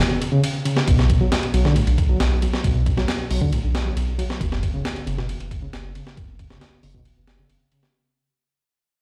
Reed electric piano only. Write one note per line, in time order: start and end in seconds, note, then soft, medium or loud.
0.32 0.41 C#3 medium
0.65 0.86 C#3 medium
0.88 1.20 B2 medium
1.21 1.30 F#3 medium
1.54 1.64 F#3 medium
1.65 1.74 D3 loud
1.76 1.81 A2 medium
2.09 2.18 F#3 medium
2.42 2.63 F#3 medium
2.64 2.96 B2 medium
2.97 3.06 F#3 medium
3.30 3.40 F#3 medium
3.41 3.50 D3 loud
3.52 3.58 A2 medium
3.85 3.94 F#3 medium
4.18 4.39 F#3 medium
4.40 4.73 F#2 medium
4.74 4.83 C#3 medium
5.07 5.17 C#3 medium
5.18 5.27 B2 loud
5.29 5.34 E2 medium
5.62 5.71 C#3 medium
5.95 6.16 C#3 medium
6.16 6.49 F#2 medium
6.50 6.59 C#3 medium
6.83 6.93 C#3 medium
6.94 7.03 B2 loud
7.06 7.11 E2 medium
7.39 7.48 C#3 medium
7.72 7.93 C#3 medium